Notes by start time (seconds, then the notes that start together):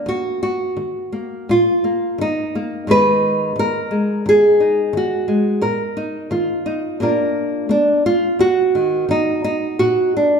Already playing: A#3
0.06 D#2 F#4
0.43 F#4
0.77 D#3
1.12 A#3
1.49 A#2 F4
1.84 A#3
2.18 D#3 D#4
2.55 A#3
2.87 G#2 D#3 G#3 D#4 B4
3.56 D#3 A#4
3.91 G#3
4.26 D#3 G#4
4.60 D#4
4.93 D#3
4.97 F#4
5.28 G#3
5.61 A#2 A#4
5.97 D#4
6.31 D#3 F4
6.66 D#4
7.00 A#2 A#3 D4 F4 A#4
7.69 A#3 D4
8.06 F4
8.39 D#2 F#4
8.75 D#3
9.09 D#3 D#4
9.44 D#4
9.79 A#2 F#4
10.17 D4